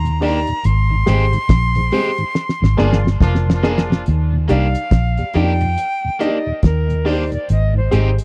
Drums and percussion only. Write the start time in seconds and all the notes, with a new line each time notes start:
0.05 closed hi-hat
0.22 open hi-hat
0.47 closed hi-hat
0.64 closed hi-hat
1.07 snare, closed hi-hat
1.33 closed hi-hat
1.49 kick, snare, closed hi-hat
1.75 closed hi-hat
1.91 open hi-hat
2.18 closed hi-hat
2.35 snare
2.49 snare
2.64 snare
2.79 snare
2.93 snare
3.07 snare
3.21 kick, snare
3.35 snare
3.50 snare
3.64 snare
3.78 snare
3.92 snare
4.06 closed hi-hat
4.49 closed hi-hat
4.75 closed hi-hat
4.91 kick, snare, closed hi-hat
5.17 closed hi-hat
5.33 closed hi-hat
5.61 closed hi-hat
5.78 closed hi-hat
6.20 closed hi-hat
6.63 kick, snare, closed hi-hat
6.90 closed hi-hat
7.06 open hi-hat
7.32 closed hi-hat
7.49 closed hi-hat
7.92 closed hi-hat
8.18 closed hi-hat